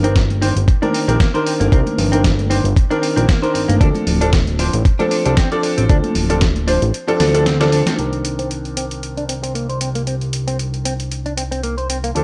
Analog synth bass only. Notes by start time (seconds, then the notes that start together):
Already playing: G1
0.56 G1
1.08 A#1
1.60 G1
1.72 C2
1.98 G1
2.64 G1
3.17 A#1
3.55 G1
3.69 G1
3.81 D2
4.07 D1
4.74 A1
5.26 C2
5.78 A1
5.90 D2
6.16 D1
6.82 A1
7.20 D2
7.99 C2
12.16 D2